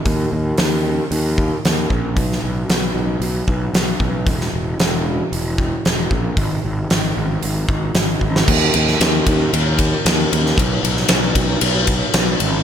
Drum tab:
CC |----------------|----------------|----------------|----------------|
RD |----------------|----------------|----------------|----------------|
HH |o---o---o---o---|o---o---o---o---|o---o---o---o---|o---o---o---o---|
SD |----o-------o---|-o--o-------o---|-o--o-------o---|----o-------o--o|
BD |o---------o---o-|o---------o---o-|o---------o---o-|o---------o---o-|

CC |x---------------|----------------|
RD |--x-x-x-x-x-x-x-|x-x-x-x-x-x-x-x-|
HH |----------------|----------------|
SD |---oo-------o--o|---oo-------o---|
BD |o-----o---o-----|o-----o---o-----|